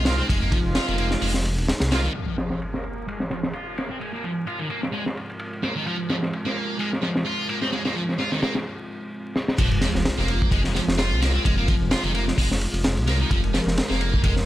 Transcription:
Already playing: detuned saw bass C2, analog synth pad G#3 C4 D#4
0.05 brass ensemble G#3 C4 F4, distorted electric guitar A#3, snare, ride
0.18 distorted electric guitar C4
0.28 detuned saw bass F1, distorted electric guitar G#3, kick, ride
0.41 distorted electric guitar A#3
0.52 distorted electric guitar F3, brass ensemble G#3 C4 F4, kick, ride
0.65 detuned saw bass F1
0.75 distorted electric guitar F4, snare, ride
0.88 detuned saw bass F1, distorted electric guitar D#3, ride
0.98 distorted electric guitar A#3, ride
1.11 snare
1.21 detuned saw bass F1, distorted electric guitar G#3, open hi-hat
1.34 snare
1.45 ride
1.58 detuned saw bass D#1, ride
1.68 snare, ride
1.80 detuned saw bass C2, snare, ride
1.91 brass ensemble G#3 C4 F4, distorted electric guitar A#3, snare, ride
2.04 distorted electric guitar D#3
2.14 distorted electric guitar F3, analog synth pad G#3 C4 F4, ride, impact
2.27 ride
2.38 distorted electric guitar F3, snare, ride
2.50 snare
2.62 ride
2.74 distorted electric guitar A#3, snare
2.83 ride
3.08 distorted electric guitar G#3, ride
3.20 snare
3.30 distorted electric guitar F3, snare, ride
3.43 snare
3.53 distorted electric guitar F4, ride
3.77 distorted electric guitar A#3, snare, ride
3.90 distorted electric guitar C4
4.00 distorted electric guitar G#3, ride
4.13 distorted electric guitar A#3
4.24 distorted electric guitar F3, ride
4.47 distorted electric guitar F4, ride
4.59 distorted electric guitar D#3, ride
4.70 distorted electric guitar A#3, ride
4.83 snare
4.93 distorted electric guitar G#3, open hi-hat
5.06 snare
5.17 ride
5.29 ride
5.39 ride
5.53 ride
5.63 distorted electric guitar A#3, snare, ride
5.76 distorted electric guitar D#3
5.86 distorted electric guitar F3, ride
6.00 ride
6.10 distorted electric guitar F3, snare, ride
6.23 snare
6.33 ride
6.45 distorted electric guitar A#3, snare
6.56 ride
6.79 distorted electric guitar G#3, ride
6.93 snare
7.02 distorted electric guitar F3, snare, ride
7.15 snare
7.26 distorted electric guitar F4, ride
7.49 distorted electric guitar A#3, ride
7.62 distorted electric guitar C4, snare
7.72 distorted electric guitar G#3, snare, ride
7.85 distorted electric guitar A#3, snare
7.95 distorted electric guitar F3, ride
8.09 snare
8.19 distorted electric guitar F4, snare, ride
8.31 distorted electric guitar D#3, snare
8.42 distorted electric guitar A#3, snare, ride
8.55 snare, ride
9.36 snare
9.48 snare
9.58 detuned saw bass F1, distorted electric guitar F3, analog synth pad G#3 C4 F4, kick, crash, ride, sub drop
9.72 ride
9.81 distorted electric guitar F3, snare, ride
9.95 detuned saw bass F1, snare
10.05 snare, ride
10.18 detuned saw bass F1, distorted electric guitar A#3, snare
10.28 ride
10.42 kick
10.51 detuned saw bass F1, distorted electric guitar G#3, kick, ride
10.64 snare
10.75 distorted electric guitar F3, snare, ride
10.88 detuned saw bass F1, snare
10.98 distorted electric guitar F4, snare, ride
11.11 detuned saw bass C2
11.21 distorted electric guitar A#3, snare, ride
11.34 distorted electric guitar C4
11.45 detuned saw bass F1, distorted electric guitar G#3, kick, ride
11.57 distorted electric guitar A#3
11.68 distorted electric guitar F3, kick, ride
11.81 detuned saw bass F1
11.91 distorted electric guitar F4, snare, ride
12.04 detuned saw bass F1, distorted electric guitar D#3, ride
12.14 distorted electric guitar A#3, ride
12.28 snare
12.38 detuned saw bass F1, distorted electric guitar G#3, kick, open hi-hat
12.51 snare
12.61 ride
12.74 detuned saw bass F1, ride
12.84 snare, ride
12.97 detuned saw bass C2, ride
13.07 distorted electric guitar A#3, snare, ride
13.20 distorted electric guitar D#3
13.30 detuned saw bass F1, distorted electric guitar F3, analog synth pad A#4, kick, ride
13.44 ride
13.54 distorted electric guitar F3, snare, ride
13.66 detuned saw bass F1, snare
13.77 snare, ride
13.90 detuned saw bass F1, distorted electric guitar A#3, snare
14.01 ride
14.14 kick
14.23 detuned saw bass F1, distorted electric guitar G#3, kick, ride
14.36 snare

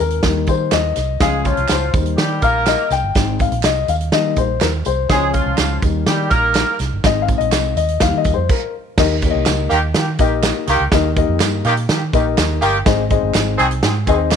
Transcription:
Already playing: upright piano G#3 C4 D#4
0.00 fingered electric bass D#2, upright piano A#4
0.10 closed hi-hat
0.23 fingered electric bass D#2, upright piano G3 A#3 D#4, kick, snare, closed hi-hat
0.47 fingered electric bass D#3, upright piano C5, kick, closed hi-hat, tambourine
0.71 fingered electric bass D#2, upright piano D#5, snare, clap, closed hi-hat, tambourine
0.96 fingered electric bass C2, snare, closed hi-hat, tambourine
1.20 fingered electric bass C#2, upright piano F3 G#3 C#4 F5, horn section G#3 G#4, kick, snare, closed hi-hat, tambourine
1.44 horn section F3 F4, upright piano C#5, kick, closed hi-hat, tambourine
1.57 fingered electric bass C2, closed hi-hat
1.69 fingered electric bass C#2, upright piano C5, snare, clap, closed hi-hat, tambourine
1.94 fingered electric bass D#2, upright piano G3 A#3 D#4, kick, closed hi-hat, tambourine
2.06 closed hi-hat
2.17 fingered electric bass D#3, horn section G3 G4, snare, closed hi-hat, tambourine
2.42 fingered electric bass A#1, horn section A#3 A#4, upright piano F5, kick, closed hi-hat, tambourine
2.66 upright piano D#5, snare, clap, closed hi-hat, tambourine
2.90 fingered electric bass C2, upright piano G5, snare, closed hi-hat, tambourine
3.03 fingered electric bass G1
3.15 fingered electric bass G#1, upright piano G#3 C4 D#4, kick, snare, closed hi-hat, tambourine
3.39 upright piano F5, kick, closed hi-hat, tambourine
3.52 fingered electric bass A#1, closed hi-hat
3.63 fingered electric bass C2, upright piano D#5, snare, clap, closed hi-hat, tambourine
3.88 fingered electric bass D#2, upright piano F5, closed hi-hat, tambourine
4.01 closed hi-hat
4.12 fingered electric bass D#3, upright piano G3 A#3 D#4 D#5, snare, closed hi-hat
4.36 fingered electric bass A#1, upright piano C5, kick, closed hi-hat, tambourine
4.61 fingered electric bass D#2, upright piano A#4, snare, clap, closed hi-hat, tambourine
4.85 fingered electric bass C2, upright piano C5, closed hi-hat, tambourine
5.09 fingered electric bass C#2, upright piano F3 G#3 C#4 C#5, horn section G#3 G#4, kick, snare, closed hi-hat, tambourine
5.33 horn section F3 F4, kick, closed hi-hat, tambourine
5.46 fingered electric bass C2
5.58 fingered electric bass C#2, snare, clap, closed hi-hat, tambourine
5.82 fingered electric bass D#2, upright piano G3 A#3 D#4, kick, closed hi-hat, tambourine
6.06 fingered electric bass D#3, horn section G3 G4, snare, closed hi-hat
6.30 fingered electric bass A#1, horn section A#3 A#4, kick, closed hi-hat, tambourine
6.55 snare, clap, closed hi-hat, tambourine
6.79 fingered electric bass C2, snare, closed hi-hat, tambourine
6.92 fingered electric bass G1
7.04 fingered electric bass G#1, upright piano G#3 C4 D#4 D#5, kick, snare, closed hi-hat, tambourine
7.22 upright piano F5
7.28 kick, closed hi-hat, tambourine
7.38 fingered electric bass A#1, upright piano D#5, closed hi-hat
7.52 fingered electric bass C2, snare, clap, closed hi-hat, tambourine
7.76 fingered electric bass D#2, upright piano D#5, closed hi-hat, tambourine
7.88 closed hi-hat
8.00 fingered electric bass D#2, upright piano G3 A#3 D#4 F5, kick, snare, closed hi-hat, tambourine
8.14 fingered electric bass D#3, upright piano D#5
8.24 fingered electric bass D#2, kick, closed hi-hat, tambourine
8.34 fingered electric bass F2, upright piano C5
8.49 upright piano A#4, kick, crash
8.98 fingered electric bass D#2, upright piano D#3 A#3 D#4 G4 A#4 D#5, kick, snare, crash, tambourine
9.22 upright piano A#3 D#4 G4 A#4 C#5, kick, closed hi-hat, tambourine
9.30 upright piano D#5
9.35 fingered electric bass C2
9.46 fingered electric bass C#2, snare, clap, closed hi-hat, tambourine
9.70 fingered electric bass D#2, horn section D#3 A#3 G4, closed hi-hat, tambourine
9.94 horn section D#3 A#3 G4, fingered electric bass D#3, snare, closed hi-hat
10.18 fingered electric bass A#1, horn section D#3 A#3 G4, upright piano A#3 D#4 G4 A#4 D#5, kick, closed hi-hat, tambourine
10.43 snare, clap, closed hi-hat, tambourine
10.67 fingered electric bass C#2, horn section D#3 A#3 G4, snare, closed hi-hat, tambourine
10.80 fingered electric bass C#2
10.92 fingered electric bass D#2, upright piano D#3 A#3 D#4 G4 A#4 D#5, kick, snare, closed hi-hat, tambourine
11.16 upright piano A#3 D#4 G4 A#4 D#5, kick, closed hi-hat
11.29 fingered electric bass F2
11.40 fingered electric bass G2, snare, clap, closed hi-hat, tambourine
11.64 fingered electric bass A#2, horn section D#3 A#3 G4, closed hi-hat, tambourine
11.77 closed hi-hat
11.89 horn section D#3 A#3 G4, fingered electric bass D#3, snare, closed hi-hat, tambourine
12.13 fingered electric bass A#1, horn section D#3 A#3 G4, upright piano A#3 D#4 G4 A#4 D#5, kick, closed hi-hat, tambourine
12.37 fingered electric bass D#2, snare, clap, closed hi-hat, tambourine
12.61 fingered electric bass G1, horn section D#3 A#3 G4, closed hi-hat, tambourine
12.85 fingered electric bass G#1, upright piano G#2 C4 D#4 G#4 C5 D#5, kick, snare, closed hi-hat, tambourine
13.10 upright piano C4 D#4 G#4 C5 D#5, kick, closed hi-hat
13.23 fingered electric bass G1
13.34 fingered electric bass G#1, snare, clap, closed hi-hat, tambourine
13.58 fingered electric bass C2, horn section D#3 C4 G#4, closed hi-hat, tambourine
13.71 closed hi-hat
13.82 fingered electric bass G#2, horn section D#3 C4 G#4, snare, closed hi-hat, tambourine
14.06 fingered electric bass D#2, horn section D#3 C4 G#4, upright piano C4 D#4 G#4 B4 D#5, kick, closed hi-hat, tambourine
14.14 upright piano C5
14.31 snare, clap, closed hi-hat, tambourine

